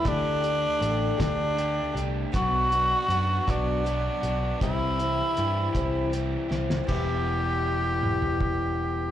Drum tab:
RD |------------|------------|------------|x-----------|
HH |x-x-x-x-x-x-|x-x-x-x-x-x-|x-x-x-x-x---|------------|
SD |------o-----|------------|----------oo|------------|
T2 |------------|------------|------------|------o-----|
FT |------------|------------|------------|-------o----|
BD |o-----o-----|o-----o-----|o-----o-----|o-------o---|